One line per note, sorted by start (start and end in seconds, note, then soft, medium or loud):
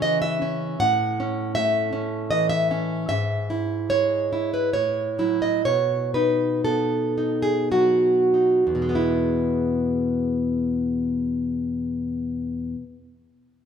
0.00 0.76 C#3 medium
0.00 0.79 E3 soft
0.00 0.41 C#4 medium
0.00 0.21 D#5 loud
0.22 0.77 E5 medium
0.42 0.80 C#4 soft
0.80 3.05 A2 medium
0.80 1.52 F#5 loud
1.20 1.91 C#4 soft
1.55 2.70 A3 soft
1.55 2.28 E5 medium
1.93 2.70 C#4 soft
2.31 3.09 E3 soft
2.31 2.49 D#5 medium
2.49 3.06 E5 medium
2.71 3.10 C#4 medium
3.09 4.70 G#2 medium
3.09 3.87 E5 medium
3.50 4.31 E4 soft
3.90 4.74 G#3 soft
3.90 4.50 C#5 medium
4.33 4.75 E4 soft
4.54 4.73 B4 medium
4.73 5.63 A2 medium
4.73 5.39 C#5 medium
5.19 5.62 F#3 soft
5.19 5.62 E4 soft
5.42 5.65 D#5 medium
5.65 8.66 B2 medium
5.65 6.13 C#5 medium
6.14 7.16 D#4 soft
6.14 6.63 B4 medium
6.65 8.33 B3 soft
6.65 7.41 A4 medium
7.18 8.33 D#4 soft
7.42 7.71 G#4 medium
7.71 8.95 F#3 soft
7.71 8.91 F#4 medium
8.34 8.89 D#4 soft
8.67 12.74 E2 soft
8.75 12.83 B2 soft
8.82 12.90 G#3 soft
8.89 12.97 B3 soft
8.95 13.03 E4 soft